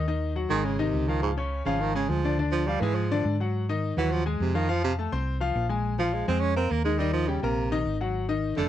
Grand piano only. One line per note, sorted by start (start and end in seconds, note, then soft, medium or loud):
0.08 0.31 D#3 medium
0.08 0.31 D#4 medium
0.08 0.32 D#5 medium
0.35 0.48 F#3 medium
0.35 0.48 F#4 medium
0.35 0.48 F#5 medium
0.50 0.74 G#3 medium
0.50 0.74 G#4 medium
0.50 0.74 G#5 medium
0.79 1.03 D#3 medium
0.79 1.03 D#4 medium
0.79 1.03 D#5 medium
1.08 1.32 F3 medium
1.08 1.32 F4 medium
1.08 1.33 F5 medium
1.37 1.61 C#3 medium
1.37 1.61 C#4 medium
1.37 1.61 C#5 medium
1.66 1.90 F3 medium
1.66 1.90 F4 medium
1.66 1.90 F5 medium
1.95 2.19 G#3 medium
1.95 2.19 G#4 medium
1.95 2.19 G#5 medium
2.24 2.36 D3 medium
2.24 2.36 D4 medium
2.24 2.36 D5 medium
2.38 2.62 D3 medium
2.38 2.62 D4 medium
2.38 2.63 D5 medium
2.68 2.79 F3 medium
2.68 2.80 F4 medium
2.68 2.80 F5 medium
2.82 3.06 G#3 medium
2.82 3.06 G#4 medium
2.82 3.06 G#5 medium
3.11 3.34 D3 loud
3.11 3.35 D4 medium
3.11 3.35 D5 loud
3.40 3.64 F#3 medium
3.40 3.64 F#4 medium
3.40 3.64 F#5 medium
3.69 3.92 D#3 medium
3.69 3.93 D#4 medium
3.69 3.93 D#5 medium
3.98 4.21 F#3 medium
3.98 4.21 F#4 medium
3.98 4.21 F#5 medium
4.26 4.49 G#3 medium
4.26 4.50 G#4 medium
4.26 4.50 G#5 medium
4.55 4.66 F3 medium
4.55 4.67 F4 medium
4.55 4.67 F5 medium
4.69 4.92 F3 medium
4.69 4.93 F4 medium
4.69 4.93 F5 medium
4.98 5.10 A3 medium
4.98 5.10 A4 medium
4.98 5.10 A5 medium
5.12 5.36 C4 medium
5.12 5.36 C5 medium
5.12 5.36 C6 medium
5.40 5.64 F3 medium
5.40 5.65 F4 medium
5.40 5.65 F5 medium
5.69 5.93 G#3 medium
5.69 5.93 G#4 medium
5.69 5.94 G#5 medium
5.99 6.22 F3 medium
5.99 6.22 F4 medium
5.99 6.23 F5 medium
6.28 6.51 G#3 medium
6.28 6.51 G#4 medium
6.28 6.52 G#5 medium
6.56 6.80 A#3 medium
6.56 6.80 A#4 medium
6.56 6.80 A#5 medium
6.85 6.97 D#3 medium
6.85 6.97 D#4 medium
6.85 6.97 D#5 medium
7.00 7.23 D#3 medium
7.00 7.23 D#4 medium
7.00 7.23 D#5 medium
7.28 7.40 G3 medium
7.28 7.40 G4 medium
7.28 7.40 G5 medium
7.43 7.66 A#3 medium
7.43 7.67 A#4 medium
7.43 7.67 A#5 medium
7.71 7.95 D#3 medium
7.71 7.95 D#4 medium
7.71 7.95 D#5 medium
8.01 8.24 F#3 medium
8.01 8.24 F#4 medium
8.01 8.24 F#5 medium
8.28 8.52 D#3 medium
8.28 8.52 D#4 medium
8.28 8.52 D#5 medium
8.57 8.69 A3 medium
8.57 8.69 A4 medium
8.57 8.69 A5 medium